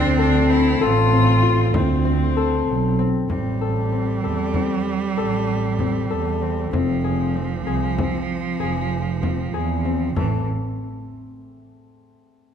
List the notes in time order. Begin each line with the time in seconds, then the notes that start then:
Already playing: D2 F3 C4 D4 A4
0.18 D4 A4
0.50 C4 E4
0.81 A1 F4 A4
1.12 C4, frame drum
1.43 F4, frame drum
1.74 D2 C4, frame drum
2.05 C4
2.37 A4
2.68 B1
2.99 C4, frame drum
3.29 A1 G3 C4, frame drum
3.61 A4
3.92 C4
4.24 E2 A4
4.54 C4, frame drum
4.85 frame drum
5.16 A1 A4, frame drum
5.79 C4, frame drum
6.10 E2 A4
6.42 C4
6.72 F1 F3 C4, frame drum
7.04 G#4
7.35 C4
7.67 C2 G#4
7.98 C4, frame drum
8.30 frame drum
8.60 F1 G#4, frame drum
9.22 C4, frame drum
9.54 E2 G#4
9.85 C4
10.16 A1 E3 A3, frame drum